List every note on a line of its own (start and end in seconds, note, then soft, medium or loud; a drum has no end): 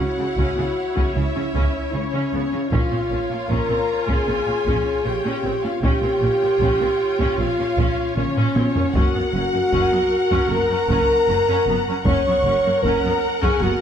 0.00 2.67 E4 medium
0.00 1.16 F#4 medium
0.00 2.68 C#5 soft
0.00 1.16 F#5 medium
0.18 0.26 C#3 soft
0.18 0.26 G#3 soft
0.37 0.45 C#2 medium
0.37 0.46 C#3 medium
0.37 0.56 C#4 soft
0.37 taiko medium
0.56 0.65 C#3 soft
0.56 0.64 B3 soft
0.96 1.04 C#3 soft
0.96 1.14 C#4 soft
0.96 taiko medium
1.15 1.23 C#2 soft
1.15 1.23 C#3 soft
1.15 1.23 B3 soft
1.15 1.92 E4 medium
1.15 1.92 E5 medium
1.35 1.43 C#3 soft
1.35 1.43 C#4 soft
1.54 1.62 C#2 medium
1.54 1.62 C#3 medium
1.54 1.73 C#4 medium
1.54 taiko medium
1.92 2.02 C#2 soft
1.92 2.02 C#3 soft
1.92 2.70 C#4 medium
1.92 2.01 C#4 soft
1.92 2.72 C#5 soft
2.13 2.21 C#3 medium
2.13 2.31 C#4 medium
2.33 2.41 C#2 soft
2.33 2.41 C#3 soft
2.33 2.41 B3 soft
2.52 2.60 C#3 soft
2.52 2.60 C#4 soft
2.70 2.79 A#1 soft
2.70 2.80 A#2 medium
2.70 2.89 C#4 medium
2.70 3.32 F4 medium
2.70 5.82 F4 medium
2.70 5.79 C#5 soft
2.70 3.48 F5 soft
2.70 taiko medium
2.91 2.99 A#2 soft
2.91 2.99 C4 soft
3.11 3.18 A#1 soft
3.11 3.19 A#2 soft
3.11 3.19 C#4 soft
3.30 3.38 A#2 soft
3.30 3.38 A#3 soft
3.49 3.57 A#1 medium
3.49 3.58 A#2 medium
3.49 3.68 C#4 medium
3.49 4.06 A#4 medium
3.49 4.08 A#5 medium
3.49 taiko medium
3.69 3.77 A#2 soft
3.69 3.77 C4 soft
4.07 4.15 A#2 medium
4.07 4.26 C#4 medium
4.07 5.05 G#4 medium
4.07 5.05 G#5 medium
4.07 taiko medium
4.27 4.35 A#1 soft
4.27 4.35 A#2 soft
4.27 4.35 C4 soft
4.46 4.54 A#2 soft
4.46 4.55 C#4 soft
4.66 4.74 A#1 medium
4.66 4.74 A#2 medium
4.66 4.84 C#4 medium
4.66 taiko medium
5.04 5.13 A#1 soft
5.04 5.13 A#2 soft
5.04 5.13 C#4 soft
5.04 5.64 G4 medium
5.04 5.62 G5 medium
5.25 5.33 A#2 medium
5.25 5.43 C#4 medium
5.44 5.52 A#1 soft
5.44 5.51 A#2 soft
5.44 5.52 C4 soft
5.62 5.72 A#2 soft
5.62 5.71 C#4 soft
5.62 5.84 F4 medium
5.62 5.82 F5 medium
5.82 5.90 A#1 medium
5.82 5.91 A#2 medium
5.82 6.01 C#4 medium
5.82 8.91 F4 medium
5.82 7.36 G4 medium
5.82 8.91 C#5 medium
5.82 7.36 G5 medium
5.82 taiko medium
6.02 6.10 A#2 soft
6.02 6.11 C4 soft
6.21 6.29 A#1 soft
6.21 6.30 A#2 soft
6.21 6.30 C#4 soft
6.41 6.49 A#2 soft
6.41 6.50 A#3 soft
6.60 6.68 A#1 medium
6.60 6.69 A#2 medium
6.60 6.79 C#4 medium
6.60 taiko medium
6.80 6.88 A#2 soft
6.80 6.88 C4 soft
7.19 7.26 A#2 medium
7.19 7.37 C#4 medium
7.19 taiko medium
7.38 7.46 A#1 soft
7.38 7.46 A#2 soft
7.38 7.47 C4 soft
7.38 8.15 F4 medium
7.38 8.15 F5 medium
7.58 7.66 A#2 soft
7.58 7.66 C#4 soft
7.77 7.86 A#1 medium
7.77 7.86 A#2 medium
7.77 7.96 C#4 medium
7.77 taiko medium
8.15 8.24 A#1 soft
8.15 8.24 A#2 soft
8.15 8.94 C#4 medium
8.15 8.25 C#4 medium
8.15 8.93 C#5 medium
8.15 taiko mid medium
8.36 8.44 A#2 medium
8.36 8.54 C#4 medium
8.36 taiko low-mid medium
8.55 8.63 A#1 soft
8.55 8.64 A#2 soft
8.55 8.63 C4 medium
8.55 taiko high medium
8.76 8.84 A#2 medium
8.76 8.83 C#4 medium
8.76 taiko low medium
8.95 9.03 F#1 medium
8.95 9.03 F#2 medium
8.95 9.13 C#4 medium
8.95 10.48 F#4 medium
8.95 12.06 A#4 medium
8.95 12.02 F#5 medium
8.95 10.51 F#5 medium
8.95 taiko medium
9.14 9.23 F#2 soft
9.14 9.22 B3 soft
9.34 9.42 F#1 soft
9.34 9.42 F#2 soft
9.34 9.42 C#4 soft
9.53 9.61 F#2 soft
9.53 9.61 A#3 soft
9.72 9.81 F#1 medium
9.72 9.81 F#2 medium
9.72 9.91 C#4 medium
9.72 taiko medium
9.92 10.00 F#2 soft
9.92 10.00 B3 soft
10.31 10.39 F#2 medium
10.31 10.49 C#4 medium
10.31 taiko medium
10.50 10.58 F#1 medium
10.50 10.58 F#2 soft
10.50 10.58 B3 medium
10.50 11.89 A#4 loud
10.50 12.07 A#5 medium
10.70 10.78 F#2 soft
10.70 10.78 C#4 medium
10.89 10.98 F#1 medium
10.89 10.98 F#2 medium
10.89 11.08 C#4 medium
10.89 taiko medium
11.28 11.36 F#1 soft
11.28 11.37 F#2 soft
11.28 11.37 C#4 medium
11.48 11.56 F#2 medium
11.48 11.66 C#4 medium
11.67 11.75 F#1 medium
11.67 11.76 F#2 medium
11.67 11.76 B3 medium
11.88 11.96 F#2 medium
11.88 11.96 C#4 medium
12.06 12.14 F#1 medium
12.06 12.14 F#2 medium
12.06 12.25 C#4 medium
12.06 13.81 A#4 medium
12.06 12.82 C#5 loud
12.06 13.81 F#5 medium
12.06 12.83 C#6 medium
12.06 taiko loud
12.27 12.34 F#2 medium
12.27 12.35 B3 soft
12.44 12.52 F#1 medium
12.44 12.54 F#2 medium
12.44 12.54 C#4 medium
12.65 12.73 F#2 soft
12.65 12.73 A#3 soft
12.82 12.92 F#1 medium
12.82 12.93 F#2 medium
12.82 13.03 C#4 medium
12.82 13.42 A#4 loud
12.82 13.42 A#5 medium
12.82 taiko medium
13.05 13.12 F#2 medium
13.05 13.12 B3 soft
13.42 13.50 F#2 medium
13.42 13.61 C#4 medium
13.42 13.62 G#4 medium
13.42 13.62 G#5 medium
13.42 taiko medium
13.62 13.70 F#1 medium
13.62 13.70 F#2 medium
13.62 13.70 B3 medium
13.62 13.81 F#4 loud
13.62 13.81 F#5 medium